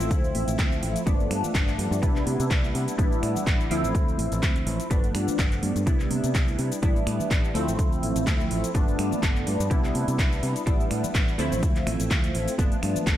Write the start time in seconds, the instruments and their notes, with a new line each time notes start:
Already playing: analog polysynth F3 A3 C4 E4
0.00 shaker
0.11 fingered electric bass D2, kick, closed hi-hat, shaker
0.24 shaker
0.34 fingered electric bass A1, open hi-hat, high conga, shaker
0.47 fingered electric bass A1, closed hi-hat, shaker
0.59 fingered electric bass D2, kick, clap, closed hi-hat, shaker
0.71 high conga, shaker
0.83 fingered electric bass A1, open hi-hat, shaker
0.96 closed hi-hat, shaker
1.06 fingered electric bass G1, analog polysynth F3 A3 B3 D4, kick, closed hi-hat, high conga, shaker
1.20 shaker
1.31 fingered electric bass G2, finger snap, open hi-hat, shaker
1.43 muted fingered electric bass stroke, high conga, low conga, shaker
1.55 fingered electric bass G1, kick, clap, closed hi-hat, shaker
1.68 clap, shaker
1.78 fingered electric bass G2, open hi-hat, high conga, shaker
1.91 fingered electric bass G2, shaker
2.02 fingered electric bass C2, analog polysynth G3 B3 D4 E4, kick, closed hi-hat, shaker
2.16 clap, shaker
2.26 fingered electric bass C3, open hi-hat, high conga, shaker
2.40 fingered electric bass C3, closed hi-hat, shaker
2.51 fingered electric bass C2, kick, clap, closed hi-hat, shaker
2.64 high conga, shaker
2.74 fingered electric bass C3, open hi-hat, shaker
2.88 closed hi-hat, shaker
2.98 fingered electric bass A1, analog polysynth G3 B3 D4 E4, kick, closed hi-hat, high conga, shaker
3.12 shaker
3.23 fingered electric bass A2, finger snap, open hi-hat, shaker
3.35 muted fingered electric bass stroke, high conga, low conga, shaker
3.47 fingered electric bass A1, kick, clap, closed hi-hat, shaker
3.60 shaker
3.70 fingered electric bass D2, analog polysynth F3 A3 C4 E4, open hi-hat, high conga, shaker
3.84 fingered electric bass A1, shaker
3.95 fingered electric bass D2, kick, closed hi-hat, shaker
4.08 shaker
4.18 fingered electric bass A1, open hi-hat, high conga, shaker
4.32 fingered electric bass A1, closed hi-hat, shaker
4.43 fingered electric bass D2, kick, clap, closed hi-hat, shaker
4.56 closed hi-hat, high conga, shaker
4.67 fingered electric bass A1, open hi-hat, shaker
4.79 closed hi-hat, shaker
4.90 fingered electric bass G1, analog polysynth F3 A3 B3 D4, kick, closed hi-hat, high conga, shaker
5.04 closed hi-hat, shaker
5.15 fingered electric bass G2, finger snap, open hi-hat, shaker
5.27 muted fingered electric bass stroke, high conga, low conga, shaker
5.39 fingered electric bass G1, kick, clap, closed hi-hat, shaker
5.52 clap, closed hi-hat, shaker
5.63 fingered electric bass G2, open hi-hat, high conga, shaker
5.75 fingered electric bass G2, closed hi-hat, shaker
5.86 fingered electric bass C2, analog polysynth G3 B3 D4 E4, kick, closed hi-hat, shaker
6.00 clap, shaker
6.10 fingered electric bass C3, open hi-hat, high conga, shaker
6.24 fingered electric bass C3, closed hi-hat, shaker
6.35 fingered electric bass C2, kick, clap, closed hi-hat, shaker
6.48 high conga, shaker
6.59 fingered electric bass C3, open hi-hat, shaker
6.72 closed hi-hat, shaker
6.82 fingered electric bass A1, analog polysynth G3 B3 D4 E4, kick, closed hi-hat, high conga, shaker
6.96 shaker
7.07 fingered electric bass A2, finger snap, open hi-hat, shaker
7.19 muted fingered electric bass stroke, high conga, low conga, shaker
7.31 fingered electric bass A1, kick, clap, closed hi-hat, shaker
7.44 shaker
7.54 fingered electric bass D2, analog polysynth F3 A3 C4 E4, open hi-hat, high conga, shaker
7.67 fingered electric bass A1, shaker
7.79 fingered electric bass D2, kick, closed hi-hat, shaker
7.92 shaker
8.03 fingered electric bass A1, open hi-hat, high conga, shaker
8.16 fingered electric bass A1, closed hi-hat, shaker
8.27 fingered electric bass D2, kick, clap, closed hi-hat, shaker
8.39 high conga, shaker
8.51 fingered electric bass A1, open hi-hat
8.64 closed hi-hat, shaker
8.74 fingered electric bass G1, analog polysynth F3 A3 B3 D4, kick, closed hi-hat, high conga, shaker
8.88 shaker
8.99 fingered electric bass G2, finger snap, open hi-hat, shaker
9.12 muted fingered electric bass stroke, high conga, low conga, shaker
9.23 fingered electric bass G1, kick, clap, closed hi-hat, shaker
9.36 clap, shaker
9.46 fingered electric bass G2, open hi-hat, high conga, shaker
9.60 fingered electric bass G2, shaker
9.70 fingered electric bass C2, analog polysynth G3 B3 D4, kick, closed hi-hat, shaker
9.71 analog polysynth E4, shaker
9.84 clap, shaker
9.94 fingered electric bass C3, open hi-hat, high conga, shaker
10.08 fingered electric bass C3, closed hi-hat, shaker
10.18 fingered electric bass C2, kick, clap, closed hi-hat, shaker
10.31 high conga, shaker
10.43 fingered electric bass C3, open hi-hat, shaker
10.55 closed hi-hat, shaker
10.66 fingered electric bass A1, analog polysynth G3 B3 D4 E4, kick, closed hi-hat, high conga, shaker
10.80 shaker
10.91 fingered electric bass A2, finger snap, open hi-hat, shaker
11.03 muted fingered electric bass stroke, high conga, low conga, shaker
11.14 fingered electric bass A1, kick, clap, closed hi-hat, shaker
11.28 shaker
11.38 fingered electric bass D2, analog polysynth F3 A3 C4 E4, open hi-hat, high conga, shaker
11.52 fingered electric bass A1, shaker
11.63 fingered electric bass D2, kick, closed hi-hat, shaker
11.76 clap, closed hi-hat, shaker
11.86 fingered electric bass A1, finger snap, open hi-hat, high conga, shaker
12.00 fingered electric bass A1, closed hi-hat, shaker
12.11 kick, clap, closed hi-hat, shaker
12.24 closed hi-hat, high conga, shaker
12.35 fingered electric bass A1, open hi-hat, shaker
12.48 open hi-hat, shaker
12.58 fingered electric bass G1, analog polysynth F3 A3 B3 D4, kick, closed hi-hat, high conga, shaker
12.72 muted fingered electric bass stroke, closed hi-hat, shaker
12.83 fingered electric bass G2, finger snap, open hi-hat, shaker
12.95 muted fingered electric bass stroke, closed hi-hat, high conga, low conga, shaker
13.07 fingered electric bass G1, kick, clap, closed hi-hat, shaker